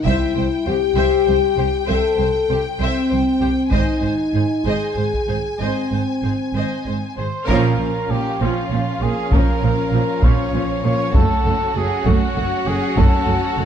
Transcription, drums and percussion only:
0.05 taiko
3.71 taiko
5.14 taiko
7.48 taiko
9.32 taiko
10.23 taiko
11.14 taiko
12.06 taiko
12.97 taiko

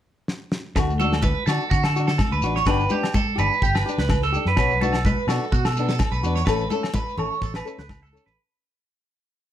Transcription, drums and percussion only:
0.28 snare
0.52 snare
0.76 kick, snare, muted conga, low agogo, shekere
0.90 shekere
1.00 high conga, shekere
1.13 snare, low agogo, shekere
1.22 kick, high conga, shekere
1.47 snare, low agogo, shekere
1.61 shekere
1.71 kick, muted conga, shekere
1.84 snare, low agogo, shekere
1.96 muted conga, shekere
2.08 snare, shekere
2.18 kick, snare, high conga, low agogo, shekere
2.32 shekere
2.42 muted conga, shekere
2.56 snare
2.65 kick, snare, muted conga, low agogo, shekere
2.79 shekere
2.89 high conga, shekere
3.03 snare, low agogo
3.14 kick, high conga, shekere
3.38 low conga, low agogo, shekere
3.53 shekere
3.62 kick, muted conga, shekere
3.75 snare, low agogo, shekere
3.87 muted conga, shekere
3.98 snare, shekere
4.09 kick, snare, high conga, low agogo, shekere
4.22 snare, shekere
4.34 muted conga, shekere
4.46 snare
4.56 kick, snare, muted conga, low agogo, shekere
4.71 shekere
4.82 high conga, shekere
4.93 snare, low agogo, shekere
5.05 kick, high conga, shekere
5.28 snare, low agogo, shekere
5.43 shekere
5.52 kick, muted conga, shekere
5.65 snare, low agogo, shekere
5.76 muted conga, shekere
5.89 snare, shekere
5.99 kick, snare, high conga, low agogo, shekere
6.13 shekere
6.23 muted conga, shekere
6.36 snare
6.47 kick, snare, muted conga, low agogo, shekere
6.61 shekere
6.70 high conga, shekere
6.83 snare, low agogo
6.94 kick, high conga, shekere
7.09 shekere
7.18 low conga, low agogo
7.33 shekere
7.42 kick, snare, muted conga, shekere
7.54 snare, low agogo, shekere
7.65 muted conga, shekere
7.79 snare, shekere
7.89 kick, snare, high conga, low agogo, shekere
8.06 shekere
8.17 shekere
8.26 snare

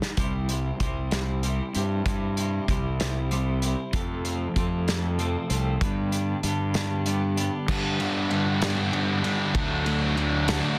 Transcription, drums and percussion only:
0.02 snare
0.17 kick, closed hi-hat
0.49 closed hi-hat
0.80 kick, closed hi-hat
1.11 snare, closed hi-hat
1.43 closed hi-hat
1.75 closed hi-hat
2.06 kick, closed hi-hat
2.37 closed hi-hat
2.68 kick, closed hi-hat
3.00 snare, closed hi-hat
3.31 closed hi-hat
3.62 closed hi-hat
3.93 kick, closed hi-hat
4.25 closed hi-hat
4.56 kick, closed hi-hat
4.88 snare, closed hi-hat
5.19 closed hi-hat
5.50 closed hi-hat
5.81 kick, closed hi-hat
6.12 closed hi-hat
6.43 closed hi-hat
6.74 snare, closed hi-hat
7.06 closed hi-hat
7.37 closed hi-hat
7.68 kick, crash
8.00 ride
8.31 ride
8.62 snare, ride
8.93 ride
9.24 ride
9.55 kick, ride
9.86 ride
10.17 ride
10.48 snare, ride

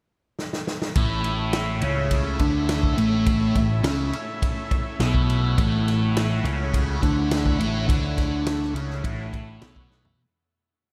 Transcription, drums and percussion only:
0.39 snare
0.53 snare
0.67 snare
0.82 snare
0.95 kick, ride
1.24 ride
1.53 snare, ride
1.81 ride
2.11 kick, ride
2.39 kick, ride
2.69 snare, ride
2.83 kick
2.98 ride
3.26 kick, ride
3.55 kick, ride
3.84 snare, ride
4.13 ride
4.42 kick, ride
4.71 kick, ride
5.00 snare, ride
5.14 kick
5.30 ride
5.58 kick, ride
5.88 snare, ride
6.17 snare, ride
6.45 ride
6.74 kick, ride
7.02 kick, ride
7.31 snare, ride
7.46 kick
7.60 ride
7.89 kick, ride
8.18 kick, snare, ride
8.46 snare, ride
8.62 snare
8.76 ride
8.90 snare
9.04 kick, ride
9.33 kick, ride
9.62 snare, ride
9.76 kick
9.91 snare
10.05 floor tom

